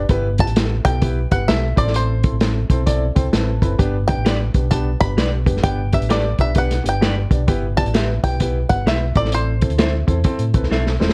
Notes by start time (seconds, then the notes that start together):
0.09 G1 B3 E4 G4 B4, kick, closed hi-hat
0.38 B3 E4 G4 B4 A5, kick, closed hi-hat
0.47 A1, closed hi-hat
0.56 B3 E4 G4 A4, snare, closed hi-hat
0.84 B1 B3 E4 G4 A4 G5, kick, closed hi-hat
1.01 B3 E4 G4 B4, kick, closed hi-hat
1.31 G1 B3 E4 G4 B4 F#5, kick, closed hi-hat
1.48 B1 B3 E4 G4 A4 E5, snare, closed hi-hat
1.76 A1 C4 E4 A4 C5 D5, kick, closed hi-hat
1.87 snare
1.94 C5, closed hi-hat
2.23 C4 E4 A4 C5, kick, closed hi-hat
2.32 A1
2.41 C4 E4 A4 C5, snare, closed hi-hat
2.69 B1 C4 E4 A4 C5, kick, closed hi-hat
2.86 C4 E4 A4 D5, kick, closed hi-hat
3.15 C2 C4 E4 A4 C5 G5, kick, closed hi-hat
3.33 A1 C4 E4 A4 B4 A5, snare, closed hi-hat
3.62 F#1 C4 E4 A4 B4 B5, kick, closed hi-hat
3.79 G1 B3 D4 G4 B4, kick, closed hi-hat
4.08 B3 D4 G4 B4 G5, kick, closed hi-hat
4.17 A1
4.25 B3 D4 G4 B4 D5, snare, closed hi-hat
4.54 B1 B3 D4 G4 B4, kick, closed hi-hat
4.71 B3 D4 G4 B4 A5, kick, closed hi-hat
5.01 G1 B3 D4 G4 B4 B5, kick, closed hi-hat
5.17 B1 B3 D4 G4 B4 D5, snare, closed hi-hat
5.46 F#1 B3 D4 G4 B4, kick, closed hi-hat
5.57 snare
5.63 G1 B3 D4 G4 B4 G5, kick, closed hi-hat
5.92 B3 D4 G4 B4 E5, kick, closed hi-hat
6.01 A1, closed hi-hat
6.09 B3 D4 G4 A4 B4 D5, snare, closed hi-hat
6.38 B1 B3 D4 G4 B4 E5, kick, closed hi-hat
6.55 B3 D4 G4 B4 F#5, kick, closed hi-hat
6.71 snare, closed hi-hat
6.84 G1 B3 D4 G4 B4, closed hi-hat
6.89 G5
7.01 B3 D4 G4 B4 D5, snare, closed hi-hat
7.31 B1 B3 D4 G4 D5, kick, closed hi-hat
7.47 G1 B3 E4 G4 B4, kick, closed hi-hat
7.77 B3 E4 G4 D5 A5, kick, closed hi-hat
7.86 A1, closed hi-hat
7.94 B3 E4 G4 B4 E5, snare, closed hi-hat
8.23 B1 B3 E4 G4 B4 G5, kick, closed hi-hat
8.40 B3 E4 G4 B4, kick, closed hi-hat
8.69 G1 B3 E4 G4 B4 F#5, kick, closed hi-hat
8.86 B1 B3 E4 G4 B4 E5, snare, closed hi-hat
9.15 A1 C4 E4 A4 C5 D5, kick, closed hi-hat
9.25 snare
9.32 C5, closed hi-hat
9.61 C4 E4 A4 C5, kick, closed hi-hat
9.70 D2, closed hi-hat
9.78 C4 E4 A4 C5 E5, snare, closed hi-hat
10.07 E2 C4 E4 A4 C5, kick, closed hi-hat
10.24 C4 E4 A4 C5, kick, closed hi-hat
10.39 A2, closed hi-hat
10.54 A1 C4 E4 A4 B4, kick, closed hi-hat
10.62 C2, snare
10.71 B1 C4 E4 A4 C5 E5, snare
10.87 snare
11.00 D#1 C4 E4 A4 C5, snare
11.09 snare